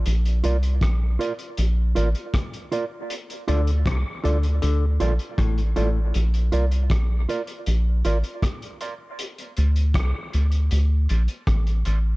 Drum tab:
HH |xxxxx-xxx-xxxxx-|xxxxx-xxx-xxxxx-|xxxxx-xxx-xxxxx-|xxxxx-xxx-xxxxx-|
SD |----r-------r---|----r-------r---|----r-------r---|----r-------r---|
BD |----o-------o---|----o-------o---|----o-------o---|----o-------o---|